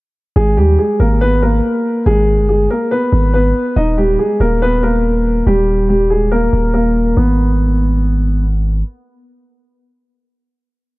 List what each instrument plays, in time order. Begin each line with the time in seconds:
0.36 808-style bass G#1, grand piano G#3 G#4
0.57 808-style bass D#2, grand piano G3 G4
0.79 grand piano G#3 G#4
1.00 808-style bass G#1, grand piano A#3 A#4
1.21 grand piano B3 B4
1.42 grand piano A#3 A#4
2.06 808-style bass G#1, grand piano G#3 G#4
2.39 808-style bass G1
2.49 grand piano G#3 G#4
2.71 grand piano A#3 A#4
2.91 grand piano B3 B4
3.13 808-style bass G#1
3.34 grand piano B3 B4
3.76 808-style bass D#1, grand piano D#4 D#5
3.98 grand piano G3 G4
4.19 grand piano G#3 G#4
4.40 808-style bass D#1, grand piano A#3 A#4
4.62 grand piano B3 B4
4.83 grand piano A#3 A#4
5.47 808-style bass D#1, grand piano G3 G4
5.89 grand piano G3 G4
6.10 grand piano G#3 G#4
6.32 grand piano A#3 A#4
6.53 808-style bass D#1
6.74 grand piano A#3 A#4
7.17 808-style bass G#1, grand piano B3